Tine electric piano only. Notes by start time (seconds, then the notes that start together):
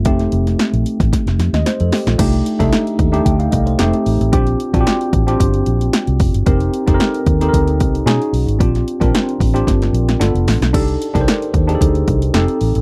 0.05 A3 C4 D#4 G4
1.54 D#5
1.66 C5
1.81 A4
1.93 G4
2.06 F4
2.18 A3 D4 D#4 G4
2.59 A3 D4 D#4 A4
3.12 A3 D4 D#4 G4
3.25 G5
3.39 F5
3.52 D#5
3.66 C5
3.79 A3 C4 D#4 G4
4.32 C4 D4 F4 G4
4.74 C4 D4 F4 F#4
4.81 G4
5.27 C4 D4 F4 G4
6.46 C4 D#4 G4 A#4
6.87 C4 D#4 G4 A4
6.94 A#4
7.41 C4 D#4 G4 A4
7.49 A#4
8.06 C#4 D#4 F#4 G#4
8.59 C4 D4 F4 G4
9.00 C4 D4 F4 A#4
9.54 C4 D4 F4 G4
10.20 B3 D4 F4 A4
10.73 D4 D#4 G4 A4
11.14 D4 D#4 G4 A#4
11.21 C5
11.67 D4 D#4 G4 G#4
11.75 A4
12.34 C4 D#4 G4 A4